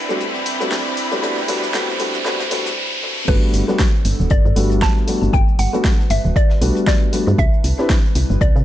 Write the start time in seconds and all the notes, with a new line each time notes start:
Already playing: G3 C4 D4 E4 B4 D5 F#5 B5, riser
0.09 G3 A3 B3 D4 F#4, shaker
0.21 closed hi-hat, shaker
0.35 shaker
0.46 closed hi-hat, open hi-hat
0.60 G3 A3 B3 D4 F#4, closed hi-hat, shaker
0.71 snare, closed hi-hat, shaker
0.87 snare, shaker
0.97 closed hi-hat, open hi-hat
1.11 G3 A3 B3 D4 F#4, shaker
1.22 G3 A3 B3 D4 F#4 C5, closed hi-hat, shaker
1.38 shaker
1.48 G3 A3 B3 D4 F#4, closed hi-hat, open hi-hat
1.63 closed hi-hat, shaker
1.74 G3 A3 B3 D4 F#4, snare, closed hi-hat, shaker
1.89 snare, shaker
1.99 G3 A3 B3 D4 F#4, closed hi-hat, open hi-hat
2.15 shaker
2.25 G3 A3 B3 D4 F#4, snare, closed hi-hat, shaker
2.40 snare, closed hi-hat, shaker
2.51 G3 A3 B3 D4 F#4, snare, closed hi-hat, open hi-hat
2.66 snare, closed hi-hat, shaker
3.28 G1 G3 A3 B3 D4 F#4 A4 B4, kick, closed hi-hat, crash, shaker
3.43 shaker
3.53 G1, closed hi-hat, open hi-hat, shaker
3.68 G3 A3 B3 D4 F#4, snare, shaker
3.79 kick, snare, closed hi-hat, shaker
3.94 snare, shaker
4.05 G1, closed hi-hat, open hi-hat, shaker
4.20 D1, shaker
4.30 G1 D5, kick, closed hi-hat, shaker
4.45 G2, shaker
4.56 G1 G3 A3 B3 D4 F#4, closed hi-hat, open hi-hat, shaker
4.71 closed hi-hat, shaker
4.82 A5, kick, snare, closed hi-hat, shaker
4.97 snare, shaker
5.07 G3 A3 B3 D4 F#4, closed hi-hat, open hi-hat, shaker
5.22 G1, shaker
5.33 G1 B4 G5, kick, closed hi-hat, shaker
5.48 shaker
5.59 G1 F#5, closed hi-hat, open hi-hat, shaker
5.73 G3 A3 B3 D4 F#4, closed hi-hat, shaker
5.85 kick, snare, closed hi-hat, shaker
6.00 snare, shaker
6.10 G1 E5, closed hi-hat, open hi-hat, shaker
6.25 D1, shaker
6.36 D5, kick, closed hi-hat, shaker
6.50 snare, shaker
6.61 B1 G3 A3 B3 D4 F#4, closed hi-hat, open hi-hat, shaker
6.76 closed hi-hat, shaker
6.87 D5, kick, snare, closed hi-hat, shaker
7.02 shaker
7.12 G3 A3 B3 D4 F#4, closed hi-hat, open hi-hat, shaker
7.27 G2, shaker
7.38 C2 C4 E4 B4 E5, kick, closed hi-hat, shaker
7.54 shaker
7.64 C2, closed hi-hat, open hi-hat, shaker
7.78 C4 D4 E4 G4 B4, snare, shaker
7.89 kick, snare, closed hi-hat, shaker
8.04 snare, shaker
8.15 C2, closed hi-hat, open hi-hat, shaker
8.30 G1, shaker
8.41 C2 D5, kick, closed hi-hat, shaker
8.56 C3, shaker